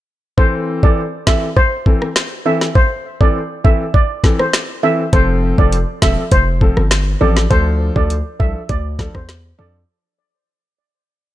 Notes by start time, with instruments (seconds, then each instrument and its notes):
0.38 grand piano E3 C4 A4, steel pan C5, kick
0.83 grand piano E3 C4 A4, steel pan D5, kick
1.27 grand piano E3 C4 A4, steel pan E5, finger snap, kick, snare
1.57 steel pan C5, kick
1.86 grand piano E3 C4 A4, kick
2.02 cross-stick
2.16 finger snap, snare
2.45 grand piano E3 C4 A4, steel pan E5
2.61 snare
2.75 steel pan C5, kick
3.20 grand piano E3 C4 A4, steel pan D5, kick
3.64 grand piano E3 C4 A4, steel pan E5, kick
3.94 steel pan D5, kick
4.24 grand piano E3 C4 A4, kick, snare
4.39 steel pan C5, cross-stick
4.53 finger snap, snare
4.83 grand piano E3 C4 A4, steel pan E5
5.13 808-style bass F1, grand piano F3 C4 A4, steel pan C5, kick, closed hi-hat
5.58 808-style bass F1, grand piano F3 C4 A4, steel pan D5, kick
5.72 closed hi-hat
6.02 808-style bass E1, grand piano F3 C4 A4, steel pan E5, finger snap, kick, snare
6.31 808-style bass F1, steel pan C5, kick, closed hi-hat
6.61 grand piano F3 C4 A4, kick
6.77 808-style bass G1, cross-stick
6.91 finger snap, snare, closed hi-hat
7.21 808-style bass A1, grand piano F3 C4 A4, steel pan D5
7.37 snare
7.50 808-style bass D2, grand piano F3 D4 A4, steel pan C5, kick, closed hi-hat
7.96 808-style bass D2, grand piano F3 D4 A4, steel pan D5, kick
8.10 closed hi-hat
8.39 808-style bass C2, grand piano F3 D4 A4, steel pan E5, kick
8.69 808-style bass D2, steel pan D5, kick, closed hi-hat
8.99 grand piano F3 D4 A4, kick, snare
9.15 808-style bass E2, steel pan C5, kick, cross-stick
9.29 finger snap, snare, closed hi-hat
9.58 808-style bass F2, grand piano F3 D4 A4, steel pan D5